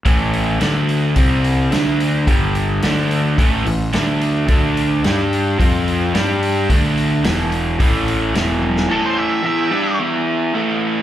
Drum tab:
HH |o-o-o-o-o-o-o-o-|o-o-o-o-o-o-o-o-|o-o-o-o-o-o-o-o-|o-o-o-o-o-o-o---|
SD |----o-------o---|----o-------o---|----o-------o---|----o-------o--o|
T1 |----------------|----------------|----------------|--------------o-|
BD |o-------o-------|o-------o-------|o-------o-------|o-------o-------|

HH |----------------|
SD |----------------|
T1 |----------------|
BD |----------------|